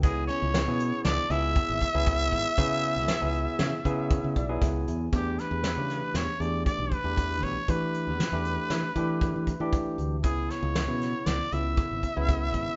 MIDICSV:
0, 0, Header, 1, 6, 480
1, 0, Start_track
1, 0, Tempo, 510638
1, 32, Time_signature, 5, 2, 24, 8
1, 11995, End_track
2, 0, Start_track
2, 0, Title_t, "Trumpet"
2, 0, Program_c, 0, 56
2, 30, Note_on_c, 0, 68, 86
2, 253, Note_off_c, 0, 68, 0
2, 257, Note_on_c, 0, 73, 90
2, 943, Note_off_c, 0, 73, 0
2, 982, Note_on_c, 0, 74, 102
2, 1231, Note_on_c, 0, 76, 110
2, 1245, Note_off_c, 0, 74, 0
2, 4340, Note_off_c, 0, 76, 0
2, 4846, Note_on_c, 0, 67, 84
2, 5073, Note_on_c, 0, 71, 89
2, 5087, Note_off_c, 0, 67, 0
2, 5792, Note_on_c, 0, 73, 90
2, 5806, Note_off_c, 0, 71, 0
2, 6020, Note_on_c, 0, 74, 93
2, 6034, Note_off_c, 0, 73, 0
2, 6254, Note_off_c, 0, 74, 0
2, 6259, Note_on_c, 0, 74, 94
2, 6517, Note_on_c, 0, 71, 93
2, 6531, Note_off_c, 0, 74, 0
2, 6989, Note_on_c, 0, 73, 89
2, 7003, Note_off_c, 0, 71, 0
2, 7240, Note_on_c, 0, 71, 89
2, 7254, Note_off_c, 0, 73, 0
2, 9155, Note_off_c, 0, 71, 0
2, 9622, Note_on_c, 0, 68, 82
2, 9877, Note_on_c, 0, 73, 82
2, 9891, Note_off_c, 0, 68, 0
2, 10587, Note_on_c, 0, 74, 88
2, 10601, Note_off_c, 0, 73, 0
2, 10836, Note_on_c, 0, 76, 92
2, 10850, Note_off_c, 0, 74, 0
2, 11995, Note_off_c, 0, 76, 0
2, 11995, End_track
3, 0, Start_track
3, 0, Title_t, "Clean electric guitar"
3, 0, Program_c, 1, 27
3, 32, Note_on_c, 1, 56, 72
3, 254, Note_off_c, 1, 56, 0
3, 274, Note_on_c, 1, 61, 83
3, 951, Note_off_c, 1, 61, 0
3, 991, Note_on_c, 1, 62, 70
3, 1226, Note_off_c, 1, 62, 0
3, 1226, Note_on_c, 1, 64, 88
3, 4338, Note_off_c, 1, 64, 0
3, 11995, End_track
4, 0, Start_track
4, 0, Title_t, "Tine electric piano"
4, 0, Program_c, 2, 4
4, 42, Note_on_c, 2, 54, 76
4, 43, Note_on_c, 2, 59, 69
4, 44, Note_on_c, 2, 68, 74
4, 46, Note_on_c, 2, 64, 73
4, 557, Note_off_c, 2, 54, 0
4, 558, Note_off_c, 2, 59, 0
4, 558, Note_off_c, 2, 68, 0
4, 559, Note_off_c, 2, 64, 0
4, 637, Note_on_c, 2, 54, 71
4, 637, Note_on_c, 2, 59, 72
4, 638, Note_on_c, 2, 64, 70
4, 640, Note_on_c, 2, 68, 87
4, 1153, Note_off_c, 2, 59, 0
4, 1154, Note_off_c, 2, 54, 0
4, 1154, Note_off_c, 2, 64, 0
4, 1155, Note_off_c, 2, 68, 0
4, 1227, Note_on_c, 2, 54, 77
4, 1229, Note_on_c, 2, 59, 71
4, 1229, Note_on_c, 2, 64, 74
4, 1231, Note_on_c, 2, 68, 88
4, 1747, Note_off_c, 2, 54, 0
4, 1749, Note_off_c, 2, 59, 0
4, 1749, Note_off_c, 2, 64, 0
4, 1749, Note_off_c, 2, 68, 0
4, 1827, Note_on_c, 2, 59, 86
4, 1827, Note_on_c, 2, 64, 92
4, 1828, Note_on_c, 2, 54, 89
4, 1831, Note_on_c, 2, 68, 93
4, 2346, Note_off_c, 2, 64, 0
4, 2347, Note_off_c, 2, 54, 0
4, 2347, Note_off_c, 2, 59, 0
4, 2349, Note_off_c, 2, 68, 0
4, 2423, Note_on_c, 2, 59, 87
4, 2425, Note_on_c, 2, 54, 94
4, 2426, Note_on_c, 2, 64, 82
4, 2426, Note_on_c, 2, 68, 106
4, 2944, Note_off_c, 2, 59, 0
4, 2945, Note_off_c, 2, 54, 0
4, 2945, Note_off_c, 2, 64, 0
4, 2945, Note_off_c, 2, 68, 0
4, 3019, Note_on_c, 2, 54, 86
4, 3021, Note_on_c, 2, 59, 75
4, 3022, Note_on_c, 2, 64, 75
4, 3023, Note_on_c, 2, 68, 96
4, 3542, Note_off_c, 2, 54, 0
4, 3542, Note_off_c, 2, 59, 0
4, 3543, Note_off_c, 2, 64, 0
4, 3544, Note_off_c, 2, 68, 0
4, 3619, Note_on_c, 2, 59, 86
4, 3623, Note_on_c, 2, 54, 90
4, 3623, Note_on_c, 2, 64, 79
4, 3627, Note_on_c, 2, 68, 100
4, 4107, Note_on_c, 2, 74, 61
4, 4141, Note_off_c, 2, 59, 0
4, 4143, Note_off_c, 2, 54, 0
4, 4143, Note_off_c, 2, 64, 0
4, 4145, Note_off_c, 2, 68, 0
4, 4218, Note_on_c, 2, 54, 91
4, 4221, Note_on_c, 2, 59, 78
4, 4223, Note_on_c, 2, 64, 76
4, 4223, Note_on_c, 2, 68, 95
4, 4326, Note_off_c, 2, 74, 0
4, 4345, Note_on_c, 2, 76, 66
4, 4565, Note_off_c, 2, 76, 0
4, 4589, Note_on_c, 2, 80, 56
4, 4741, Note_off_c, 2, 54, 0
4, 4742, Note_off_c, 2, 59, 0
4, 4743, Note_off_c, 2, 64, 0
4, 4743, Note_off_c, 2, 68, 0
4, 4807, Note_off_c, 2, 80, 0
4, 4821, Note_on_c, 2, 62, 65
4, 4823, Note_on_c, 2, 52, 63
4, 4824, Note_on_c, 2, 57, 60
4, 4824, Note_on_c, 2, 67, 72
4, 5343, Note_off_c, 2, 52, 0
4, 5343, Note_off_c, 2, 62, 0
4, 5344, Note_off_c, 2, 57, 0
4, 5344, Note_off_c, 2, 67, 0
4, 5413, Note_on_c, 2, 52, 65
4, 5417, Note_on_c, 2, 67, 71
4, 5418, Note_on_c, 2, 57, 62
4, 5422, Note_on_c, 2, 62, 61
4, 5939, Note_off_c, 2, 52, 0
4, 5941, Note_off_c, 2, 57, 0
4, 5941, Note_off_c, 2, 67, 0
4, 5943, Note_off_c, 2, 62, 0
4, 6020, Note_on_c, 2, 52, 63
4, 6020, Note_on_c, 2, 57, 65
4, 6022, Note_on_c, 2, 62, 66
4, 6022, Note_on_c, 2, 67, 68
4, 6543, Note_off_c, 2, 52, 0
4, 6543, Note_off_c, 2, 57, 0
4, 6544, Note_off_c, 2, 62, 0
4, 6544, Note_off_c, 2, 67, 0
4, 6620, Note_on_c, 2, 52, 78
4, 6621, Note_on_c, 2, 57, 63
4, 6621, Note_on_c, 2, 67, 74
4, 6622, Note_on_c, 2, 62, 62
4, 7144, Note_off_c, 2, 52, 0
4, 7144, Note_off_c, 2, 57, 0
4, 7144, Note_off_c, 2, 62, 0
4, 7144, Note_off_c, 2, 67, 0
4, 7221, Note_on_c, 2, 62, 64
4, 7223, Note_on_c, 2, 52, 67
4, 7223, Note_on_c, 2, 57, 64
4, 7226, Note_on_c, 2, 67, 73
4, 7745, Note_off_c, 2, 62, 0
4, 7746, Note_off_c, 2, 52, 0
4, 7746, Note_off_c, 2, 57, 0
4, 7747, Note_off_c, 2, 67, 0
4, 7829, Note_on_c, 2, 57, 81
4, 7830, Note_on_c, 2, 52, 71
4, 7830, Note_on_c, 2, 62, 68
4, 7832, Note_on_c, 2, 67, 90
4, 8350, Note_off_c, 2, 52, 0
4, 8350, Note_off_c, 2, 57, 0
4, 8350, Note_off_c, 2, 62, 0
4, 8351, Note_off_c, 2, 67, 0
4, 8427, Note_on_c, 2, 52, 80
4, 8429, Note_on_c, 2, 67, 93
4, 8431, Note_on_c, 2, 62, 76
4, 8433, Note_on_c, 2, 57, 81
4, 8950, Note_off_c, 2, 52, 0
4, 8950, Note_off_c, 2, 67, 0
4, 8952, Note_off_c, 2, 57, 0
4, 8952, Note_off_c, 2, 62, 0
4, 9027, Note_on_c, 2, 57, 73
4, 9030, Note_on_c, 2, 52, 83
4, 9032, Note_on_c, 2, 62, 84
4, 9032, Note_on_c, 2, 67, 101
4, 9550, Note_off_c, 2, 57, 0
4, 9552, Note_off_c, 2, 52, 0
4, 9553, Note_off_c, 2, 62, 0
4, 9553, Note_off_c, 2, 67, 0
4, 9624, Note_on_c, 2, 64, 79
4, 9626, Note_on_c, 2, 49, 67
4, 9627, Note_on_c, 2, 54, 66
4, 9629, Note_on_c, 2, 59, 68
4, 10150, Note_off_c, 2, 64, 0
4, 10151, Note_off_c, 2, 49, 0
4, 10151, Note_off_c, 2, 54, 0
4, 10152, Note_off_c, 2, 59, 0
4, 10224, Note_on_c, 2, 49, 74
4, 10225, Note_on_c, 2, 59, 66
4, 10227, Note_on_c, 2, 54, 64
4, 10231, Note_on_c, 2, 64, 73
4, 10751, Note_off_c, 2, 49, 0
4, 10751, Note_off_c, 2, 59, 0
4, 10752, Note_off_c, 2, 54, 0
4, 10754, Note_off_c, 2, 64, 0
4, 10836, Note_on_c, 2, 54, 68
4, 10836, Note_on_c, 2, 59, 62
4, 10837, Note_on_c, 2, 49, 73
4, 10838, Note_on_c, 2, 64, 76
4, 11357, Note_off_c, 2, 54, 0
4, 11357, Note_off_c, 2, 59, 0
4, 11358, Note_off_c, 2, 49, 0
4, 11359, Note_off_c, 2, 64, 0
4, 11435, Note_on_c, 2, 49, 84
4, 11435, Note_on_c, 2, 54, 78
4, 11438, Note_on_c, 2, 64, 100
4, 11440, Note_on_c, 2, 59, 78
4, 11958, Note_off_c, 2, 49, 0
4, 11958, Note_off_c, 2, 54, 0
4, 11960, Note_off_c, 2, 59, 0
4, 11960, Note_off_c, 2, 64, 0
4, 11995, End_track
5, 0, Start_track
5, 0, Title_t, "Fingered electric bass"
5, 0, Program_c, 3, 33
5, 36, Note_on_c, 3, 37, 103
5, 260, Note_off_c, 3, 37, 0
5, 397, Note_on_c, 3, 37, 99
5, 620, Note_off_c, 3, 37, 0
5, 625, Note_on_c, 3, 47, 74
5, 854, Note_off_c, 3, 47, 0
5, 988, Note_on_c, 3, 37, 83
5, 1101, Note_off_c, 3, 37, 0
5, 1222, Note_on_c, 3, 37, 96
5, 1451, Note_off_c, 3, 37, 0
5, 1592, Note_on_c, 3, 32, 77
5, 1702, Note_off_c, 3, 32, 0
5, 1831, Note_on_c, 3, 37, 91
5, 2182, Note_off_c, 3, 37, 0
5, 2182, Note_on_c, 3, 32, 79
5, 2296, Note_off_c, 3, 32, 0
5, 2427, Note_on_c, 3, 49, 110
5, 2783, Note_on_c, 3, 37, 79
5, 2797, Note_off_c, 3, 49, 0
5, 2896, Note_off_c, 3, 37, 0
5, 3028, Note_on_c, 3, 37, 76
5, 3251, Note_off_c, 3, 37, 0
5, 3382, Note_on_c, 3, 49, 103
5, 3495, Note_off_c, 3, 49, 0
5, 3620, Note_on_c, 3, 49, 96
5, 3961, Note_off_c, 3, 49, 0
5, 3988, Note_on_c, 3, 49, 74
5, 4093, Note_off_c, 3, 49, 0
5, 4099, Note_on_c, 3, 35, 72
5, 4314, Note_off_c, 3, 35, 0
5, 4340, Note_on_c, 3, 37, 74
5, 4555, Note_off_c, 3, 37, 0
5, 4588, Note_on_c, 3, 40, 72
5, 4799, Note_off_c, 3, 40, 0
5, 4817, Note_on_c, 3, 40, 91
5, 5045, Note_off_c, 3, 40, 0
5, 5180, Note_on_c, 3, 40, 85
5, 5407, Note_off_c, 3, 40, 0
5, 5425, Note_on_c, 3, 49, 68
5, 5649, Note_off_c, 3, 49, 0
5, 5774, Note_on_c, 3, 40, 79
5, 5890, Note_off_c, 3, 40, 0
5, 6016, Note_on_c, 3, 40, 90
5, 6245, Note_off_c, 3, 40, 0
5, 6377, Note_on_c, 3, 35, 72
5, 6492, Note_off_c, 3, 35, 0
5, 6618, Note_on_c, 3, 40, 80
5, 6984, Note_off_c, 3, 40, 0
5, 6984, Note_on_c, 3, 35, 68
5, 7096, Note_off_c, 3, 35, 0
5, 7225, Note_on_c, 3, 52, 93
5, 7586, Note_on_c, 3, 40, 67
5, 7600, Note_off_c, 3, 52, 0
5, 7698, Note_off_c, 3, 40, 0
5, 7821, Note_on_c, 3, 40, 71
5, 8050, Note_off_c, 3, 40, 0
5, 8180, Note_on_c, 3, 52, 82
5, 8295, Note_off_c, 3, 52, 0
5, 8418, Note_on_c, 3, 52, 95
5, 8763, Note_off_c, 3, 52, 0
5, 8794, Note_on_c, 3, 52, 68
5, 8903, Note_off_c, 3, 52, 0
5, 9025, Note_on_c, 3, 52, 72
5, 9368, Note_off_c, 3, 52, 0
5, 9382, Note_on_c, 3, 38, 73
5, 9622, Note_off_c, 3, 38, 0
5, 9622, Note_on_c, 3, 37, 91
5, 9853, Note_off_c, 3, 37, 0
5, 9988, Note_on_c, 3, 37, 94
5, 10216, Note_off_c, 3, 37, 0
5, 10227, Note_on_c, 3, 47, 65
5, 10456, Note_off_c, 3, 47, 0
5, 10589, Note_on_c, 3, 37, 83
5, 10703, Note_off_c, 3, 37, 0
5, 10833, Note_on_c, 3, 37, 98
5, 11060, Note_off_c, 3, 37, 0
5, 11197, Note_on_c, 3, 32, 59
5, 11309, Note_off_c, 3, 32, 0
5, 11438, Note_on_c, 3, 37, 80
5, 11789, Note_off_c, 3, 37, 0
5, 11789, Note_on_c, 3, 32, 73
5, 11905, Note_off_c, 3, 32, 0
5, 11995, End_track
6, 0, Start_track
6, 0, Title_t, "Drums"
6, 32, Note_on_c, 9, 36, 112
6, 33, Note_on_c, 9, 42, 74
6, 126, Note_off_c, 9, 36, 0
6, 127, Note_off_c, 9, 42, 0
6, 273, Note_on_c, 9, 42, 57
6, 367, Note_off_c, 9, 42, 0
6, 510, Note_on_c, 9, 38, 109
6, 510, Note_on_c, 9, 42, 86
6, 604, Note_off_c, 9, 38, 0
6, 604, Note_off_c, 9, 42, 0
6, 748, Note_on_c, 9, 42, 64
6, 842, Note_off_c, 9, 42, 0
6, 983, Note_on_c, 9, 38, 102
6, 983, Note_on_c, 9, 42, 82
6, 1077, Note_off_c, 9, 38, 0
6, 1077, Note_off_c, 9, 42, 0
6, 1224, Note_on_c, 9, 42, 64
6, 1318, Note_off_c, 9, 42, 0
6, 1464, Note_on_c, 9, 42, 84
6, 1465, Note_on_c, 9, 36, 110
6, 1558, Note_off_c, 9, 42, 0
6, 1559, Note_off_c, 9, 36, 0
6, 1706, Note_on_c, 9, 36, 74
6, 1709, Note_on_c, 9, 42, 58
6, 1800, Note_off_c, 9, 36, 0
6, 1803, Note_off_c, 9, 42, 0
6, 1944, Note_on_c, 9, 42, 85
6, 1946, Note_on_c, 9, 36, 112
6, 2038, Note_off_c, 9, 42, 0
6, 2040, Note_off_c, 9, 36, 0
6, 2183, Note_on_c, 9, 42, 57
6, 2184, Note_on_c, 9, 36, 69
6, 2277, Note_off_c, 9, 42, 0
6, 2278, Note_off_c, 9, 36, 0
6, 2424, Note_on_c, 9, 36, 106
6, 2425, Note_on_c, 9, 42, 86
6, 2518, Note_off_c, 9, 36, 0
6, 2519, Note_off_c, 9, 42, 0
6, 2660, Note_on_c, 9, 42, 53
6, 2754, Note_off_c, 9, 42, 0
6, 2896, Note_on_c, 9, 38, 115
6, 2896, Note_on_c, 9, 42, 78
6, 2990, Note_off_c, 9, 38, 0
6, 2990, Note_off_c, 9, 42, 0
6, 3134, Note_on_c, 9, 42, 54
6, 3228, Note_off_c, 9, 42, 0
6, 3374, Note_on_c, 9, 38, 99
6, 3374, Note_on_c, 9, 42, 65
6, 3468, Note_off_c, 9, 38, 0
6, 3468, Note_off_c, 9, 42, 0
6, 3620, Note_on_c, 9, 42, 60
6, 3621, Note_on_c, 9, 36, 70
6, 3714, Note_off_c, 9, 42, 0
6, 3715, Note_off_c, 9, 36, 0
6, 3859, Note_on_c, 9, 36, 108
6, 3859, Note_on_c, 9, 42, 74
6, 3953, Note_off_c, 9, 36, 0
6, 3953, Note_off_c, 9, 42, 0
6, 4100, Note_on_c, 9, 36, 72
6, 4100, Note_on_c, 9, 42, 61
6, 4194, Note_off_c, 9, 36, 0
6, 4194, Note_off_c, 9, 42, 0
6, 4338, Note_on_c, 9, 38, 36
6, 4338, Note_on_c, 9, 42, 94
6, 4339, Note_on_c, 9, 36, 102
6, 4432, Note_off_c, 9, 38, 0
6, 4432, Note_off_c, 9, 42, 0
6, 4433, Note_off_c, 9, 36, 0
6, 4582, Note_on_c, 9, 42, 58
6, 4676, Note_off_c, 9, 42, 0
6, 4820, Note_on_c, 9, 36, 99
6, 4822, Note_on_c, 9, 42, 72
6, 4914, Note_off_c, 9, 36, 0
6, 4916, Note_off_c, 9, 42, 0
6, 5061, Note_on_c, 9, 38, 29
6, 5061, Note_on_c, 9, 42, 50
6, 5155, Note_off_c, 9, 38, 0
6, 5155, Note_off_c, 9, 42, 0
6, 5298, Note_on_c, 9, 38, 100
6, 5298, Note_on_c, 9, 42, 77
6, 5392, Note_off_c, 9, 38, 0
6, 5392, Note_off_c, 9, 42, 0
6, 5543, Note_on_c, 9, 38, 28
6, 5543, Note_on_c, 9, 42, 52
6, 5637, Note_off_c, 9, 38, 0
6, 5637, Note_off_c, 9, 42, 0
6, 5778, Note_on_c, 9, 38, 101
6, 5778, Note_on_c, 9, 42, 59
6, 5872, Note_off_c, 9, 38, 0
6, 5872, Note_off_c, 9, 42, 0
6, 6024, Note_on_c, 9, 42, 52
6, 6118, Note_off_c, 9, 42, 0
6, 6261, Note_on_c, 9, 36, 102
6, 6265, Note_on_c, 9, 42, 72
6, 6355, Note_off_c, 9, 36, 0
6, 6359, Note_off_c, 9, 42, 0
6, 6501, Note_on_c, 9, 36, 71
6, 6505, Note_on_c, 9, 42, 50
6, 6595, Note_off_c, 9, 36, 0
6, 6599, Note_off_c, 9, 42, 0
6, 6743, Note_on_c, 9, 36, 93
6, 6743, Note_on_c, 9, 42, 78
6, 6837, Note_off_c, 9, 36, 0
6, 6837, Note_off_c, 9, 42, 0
6, 6984, Note_on_c, 9, 36, 62
6, 6990, Note_on_c, 9, 42, 49
6, 7078, Note_off_c, 9, 36, 0
6, 7084, Note_off_c, 9, 42, 0
6, 7223, Note_on_c, 9, 36, 91
6, 7223, Note_on_c, 9, 42, 74
6, 7317, Note_off_c, 9, 36, 0
6, 7317, Note_off_c, 9, 42, 0
6, 7464, Note_on_c, 9, 42, 55
6, 7558, Note_off_c, 9, 42, 0
6, 7708, Note_on_c, 9, 38, 98
6, 7708, Note_on_c, 9, 42, 68
6, 7802, Note_off_c, 9, 38, 0
6, 7802, Note_off_c, 9, 42, 0
6, 7942, Note_on_c, 9, 42, 55
6, 8036, Note_off_c, 9, 42, 0
6, 8179, Note_on_c, 9, 38, 92
6, 8179, Note_on_c, 9, 42, 71
6, 8273, Note_off_c, 9, 38, 0
6, 8273, Note_off_c, 9, 42, 0
6, 8416, Note_on_c, 9, 42, 59
6, 8420, Note_on_c, 9, 36, 61
6, 8510, Note_off_c, 9, 42, 0
6, 8514, Note_off_c, 9, 36, 0
6, 8660, Note_on_c, 9, 36, 101
6, 8660, Note_on_c, 9, 42, 80
6, 8754, Note_off_c, 9, 36, 0
6, 8754, Note_off_c, 9, 42, 0
6, 8903, Note_on_c, 9, 36, 73
6, 8905, Note_on_c, 9, 42, 59
6, 8997, Note_off_c, 9, 36, 0
6, 8999, Note_off_c, 9, 42, 0
6, 9141, Note_on_c, 9, 42, 85
6, 9143, Note_on_c, 9, 36, 97
6, 9235, Note_off_c, 9, 42, 0
6, 9237, Note_off_c, 9, 36, 0
6, 9386, Note_on_c, 9, 42, 53
6, 9480, Note_off_c, 9, 42, 0
6, 9623, Note_on_c, 9, 42, 75
6, 9625, Note_on_c, 9, 36, 100
6, 9717, Note_off_c, 9, 42, 0
6, 9719, Note_off_c, 9, 36, 0
6, 9871, Note_on_c, 9, 38, 30
6, 9871, Note_on_c, 9, 42, 54
6, 9965, Note_off_c, 9, 38, 0
6, 9965, Note_off_c, 9, 42, 0
6, 10109, Note_on_c, 9, 38, 112
6, 10109, Note_on_c, 9, 42, 75
6, 10203, Note_off_c, 9, 38, 0
6, 10203, Note_off_c, 9, 42, 0
6, 10353, Note_on_c, 9, 38, 31
6, 10353, Note_on_c, 9, 42, 54
6, 10447, Note_off_c, 9, 38, 0
6, 10447, Note_off_c, 9, 42, 0
6, 10586, Note_on_c, 9, 38, 96
6, 10586, Note_on_c, 9, 42, 64
6, 10680, Note_off_c, 9, 38, 0
6, 10680, Note_off_c, 9, 42, 0
6, 10829, Note_on_c, 9, 42, 53
6, 10923, Note_off_c, 9, 42, 0
6, 11065, Note_on_c, 9, 42, 70
6, 11067, Note_on_c, 9, 36, 109
6, 11159, Note_off_c, 9, 42, 0
6, 11161, Note_off_c, 9, 36, 0
6, 11309, Note_on_c, 9, 36, 65
6, 11309, Note_on_c, 9, 42, 48
6, 11403, Note_off_c, 9, 36, 0
6, 11403, Note_off_c, 9, 42, 0
6, 11550, Note_on_c, 9, 36, 98
6, 11554, Note_on_c, 9, 42, 80
6, 11644, Note_off_c, 9, 36, 0
6, 11648, Note_off_c, 9, 42, 0
6, 11786, Note_on_c, 9, 42, 59
6, 11788, Note_on_c, 9, 36, 68
6, 11880, Note_off_c, 9, 42, 0
6, 11882, Note_off_c, 9, 36, 0
6, 11995, End_track
0, 0, End_of_file